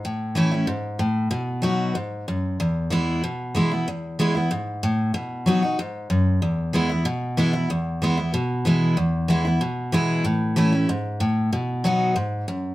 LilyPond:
\new Staff \with { instrumentName = "Steel-string acoustic guitar" } { \time 4/4 \key e \major \tempo 4 = 188 << { r4 <e a cis' e'>8 <cis' e'>8 r2 | r4 <fis b dis' fis'>4 r2 | r4 <e gis b e'>4 r4 <e gis b e'>8 <b e'>8 | r4 <e gis b e'>8 <b e'>8 r2 |
r4 <fis b dis' fis'>8 <dis' fis'>8 r2 | r4 <e gis b e'>8 <b e'>8 r4 <e gis b e'>8 <b e'>8 | r4 <e gis b e'>8 <b e'>8 r4 <e gis b e'>4 | r4 <e gis b e'>8 <b e'>8 r4 <e gis b e'>4 |
r4 <e a cis' e'>8 <cis' e'>8 r2 | r4 <fis b dis' fis'>4 r2 | } \\ { a,2 gis,4 a,4 | b,2 gis,4 fis,4 | e,2 b,2 | e,2 gis,4 a,4 |
b,2 gis,4 fis,4 | e,2 b,2 | e,2 b,2 | e,2 b,2 |
a,2 gis,4 a,4 | b,2 gis,4 fis,4 | } >> }